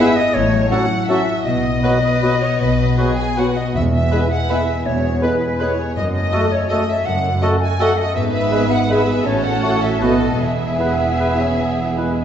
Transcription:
Already playing: harp G#2 B3 G#4
0.00 bassoon G#3, french horn section B3 G#4, clarinet E4, harp B4, oboe B4, flute E5, violin section E5
0.16 harp G#4, flute D#5, violin section D#5
0.34 double bass section A1, cello section A2, harp A2, flute C#5, violin section C#5
0.53 harp F#3
0.70 bassoon F#3, viola section C#4 F#4, french horn section C#4 F#4, clarinet F#4, violin section F#4 F#5, oboe A4, harp C#5, flute F#5
0.92 harp F#4
1.08 bassoon F#3, viola section C#4 F#4, french horn section C#4 F#4, violin section F#4 E5, clarinet F#4, oboe A4, harp C#5, flute E5
1.29 harp F#4
1.45 double bass section B1, cello section B2, harp B2, violin section D#5, flute D#5
1.64 harp B3
1.83 bassoon F#3, french horn section B3 F#4, viola section B3 F#4, clarinet F#4, oboe B4, violin section B4
2.03 harp F#4, violin section B4
2.22 bassoon F#3, french horn section B3 F#4, viola section B3 F#4, clarinet F#4, oboe B4
2.42 harp F#4, violin section C#5
2.60 double bass section B1, harp B2, cello section B2, violin section B4
2.79 harp B3
2.97 bassoon F#3, french horn section B3 F#4, viola section B3 F#4, clarinet F#4, violin section G#4, oboe B4, harp B4
3.17 harp F#4, violin section G#5, flute G#5
3.37 bassoon F#3, viola section B3 F#4, french horn section B3 F#4, violin section F#4 F#5, clarinet F#4, oboe B4, harp B4, flute F#5
3.57 harp F#4, flute D#5, violin section D#5
3.74 double bass section E1, timpani E2, harp E2, cello section E2, flute E5, violin section E5
3.93 harp B3, violin section E5, flute E5
4.11 bassoon G#3, viola section B3 G#4, french horn section B3 G#4, clarinet E4, harp B4, oboe B4, violin section B4
4.30 harp G#4, flute F#5, violin section F#5
4.49 bassoon G#3, viola section B3 G#4, french horn section B3 G#4, clarinet E4, violin section B4 E5, harp B4, oboe B4, flute E5
4.68 harp G#4
4.85 double bass section E1, harp E2, cello section E2, flute C#5, violin section C#5
5.03 harp B3
5.21 bassoon G#3, viola section B3 G#4, french horn section B3 G#4, clarinet E4, harp B4, oboe B4, violin section B4, flute B4
5.41 harp G#4
5.60 bassoon G#3, french horn section B3 G#4, viola section B3 G#4, clarinet E4, violin section B4 C#5, oboe B4, harp B4, flute C#5
5.79 harp G#4
5.96 double bass section F#1, harp F#2, cello section F#2, flute D#5, violin section D#5
6.13 harp A3, flute D#5, violin section D#5
6.32 bassoon A3, viola section A3 A4, french horn section A3 A4, clarinet F#4, oboe A4, violin section D#5, harp D#5
6.52 harp A4, flute C#5, violin section C#5
6.70 viola section A3 A4, french horn section A3 A4, bassoon A3, clarinet F#4, oboe A4, flute D#5, violin section D#5, harp D#5
6.87 harp A4, flute E5, violin section E5
7.05 double bass section F#1, cello section F#2, harp F#2, flute F#5, violin section F#5
7.24 harp A3
7.42 viola section A3 A4, bassoon A3, french horn section A3 A4, clarinet F#4, oboe A4, violin section D#5, harp D#5
7.60 harp A4, flute G#5, violin section G#5
7.79 viola section A3 A4, bassoon A3, french horn section A3 A4, clarinet F#4, oboe A4, harp D#5, violin section D#5 F#5, flute F#5
7.97 harp A4, flute D#5, violin section D#5
8.15 double bass section G#1, cello section G#2, harp G#2, viola section B3 G#4, violin section B4 E5, flute E5
8.32 harp B3, flute E5, violin section E5
8.51 bassoon G#3, french horn section B3 G#4, clarinet G#4, oboe B4, harp B4
8.70 harp G#4, flute F#5, violin section F#5
8.88 bassoon G#3, viola section B3 G#4, french horn section B3 G#4, clarinet G#4, violin section B4 E5, harp B4, oboe B4, flute E5
9.09 harp G#4
9.25 double bass section A1, harp A2, cello section A2, viola section C#4 F#4, violin section A4 C#5, flute C#5
9.44 harp C#4, violin section F#5, flute F#5
9.63 bassoon A3, french horn section C#4 A4, clarinet F#4, harp A4, oboe C#5
9.82 harp C#5, violin section E5, flute E5
10.01 double bass section B1, cello section B2, harp B2, bassoon A3, french horn section B3 A4, viola section B3 F#4, clarinet F#4, violin section A4 D#5, oboe B4, flute D#5
10.21 harp F#4 A4
10.40 double bass section E1, cello section E2, harp E3, viola section B3 E4, violin section G#4 E5, flute E5
10.59 harp E4
10.78 french horn section B3 G#4, bassoon B3, clarinet E4, harp B4, oboe B4
10.99 bassoon B3, harp E5
11.19 french horn section B3 G#4, clarinet E4, harp B4, oboe B4
11.39 bassoon C#4, harp G#4
11.58 harp E3, bassoon B3
11.78 harp E4
11.97 bassoon G#3, french horn section B3 G#4, clarinet E4, harp B4, oboe B4
12.17 harp E5, flute G#5

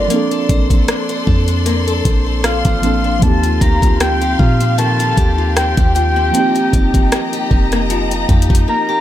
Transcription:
Already playing: synth keys G3 A#3 C4 F4 A4, steel-string acoustic guitar G3 F4 A#4 C5, soft synth lead D5, string section C6
0.08 synth keys F3 A#3, steel-string acoustic guitar A#3, string section A4 D5, closed hi-hat
0.12 synth keys C4 D4 A4
0.31 steel-string acoustic guitar A4, closed hi-hat
0.49 808-style bass A#1, steel-string acoustic guitar C5, kick, closed hi-hat
0.70 steel-string acoustic guitar A4, kick, closed hi-hat
0.88 steel-string acoustic guitar D4, cross-stick, closed hi-hat
1.09 steel-string acoustic guitar C5, closed hi-hat
1.27 808-style bass F2, steel-string acoustic guitar A4, kick
1.48 steel-string acoustic guitar D4, closed hi-hat
1.66 steel-string acoustic guitar A#3, closed hi-hat
1.87 steel-string acoustic guitar A4, closed hi-hat
2.05 808-style bass A#1, steel-string acoustic guitar C5, kick, closed hi-hat
2.26 steel-string acoustic guitar A4
2.44 steel-string acoustic guitar D4, soft synth lead F5, cross-stick, closed hi-hat
2.65 808-style bass A1, steel-string acoustic guitar C5, kick, closed hi-hat
2.82 synth keys F3 A#3 C4 D4, steel-string acoustic guitar A4, closed hi-hat
2.86 synth keys A4
3.04 steel-string acoustic guitar D4
3.19 808-style bass D#2, synth keys F3 A#3 C4, string section G4 F5, soft synth lead A5, kick, closed hi-hat
3.25 synth keys D#4 G4
3.43 steel-string acoustic guitar F4, closed hi-hat
3.61 808-style bass D2, steel-string acoustic guitar G4, soft synth lead A#5, kick, closed hi-hat
3.82 steel-string acoustic guitar F4, kick, closed hi-hat
4.00 steel-string acoustic guitar C4, soft synth lead G5, cross-stick, closed hi-hat
4.21 steel-string acoustic guitar G4, closed hi-hat
4.39 808-style bass A#2, steel-string acoustic guitar F4, soft synth lead F5, kick
4.60 steel-string acoustic guitar C4, closed hi-hat
4.78 steel-string acoustic guitar D#3, soft synth lead A5, closed hi-hat
4.99 steel-string acoustic guitar F4, closed hi-hat
5.17 808-style bass D#2, steel-string acoustic guitar G4, kick, closed hi-hat
5.38 steel-string acoustic guitar F4
5.56 steel-string acoustic guitar C4, soft synth lead G5, cross-stick, closed hi-hat
5.77 808-style bass D#2, steel-string acoustic guitar G4, kick, closed hi-hat
5.95 steel-string acoustic guitar F4, soft synth lead G5, closed hi-hat
6.16 steel-string acoustic guitar C4
6.31 synth keys F3 A#3, steel-string acoustic guitar F3, string section D#5 A#5, closed hi-hat
6.35 synth keys C4 D#4
6.39 synth keys G4
6.55 steel-string acoustic guitar D#4, closed hi-hat
6.73 808-style bass F1, steel-string acoustic guitar G4, kick, closed hi-hat
6.94 steel-string acoustic guitar D#4, kick, closed hi-hat
7.12 steel-string acoustic guitar A#3, cross-stick, closed hi-hat
7.33 steel-string acoustic guitar G4, closed hi-hat
7.51 808-style bass F1, steel-string acoustic guitar D#4, kick
7.72 steel-string acoustic guitar A#3, cross-stick, closed hi-hat
7.90 steel-string acoustic guitar F3, closed hi-hat
8.11 steel-string acoustic guitar D#4, closed hi-hat
8.29 808-style bass F2, steel-string acoustic guitar G4, kick, closed hi-hat
8.42 closed hi-hat
8.50 steel-string acoustic guitar D#4, kick
8.55 closed hi-hat
8.68 steel-string acoustic guitar A#3, soft synth lead A#5
8.89 steel-string acoustic guitar G4

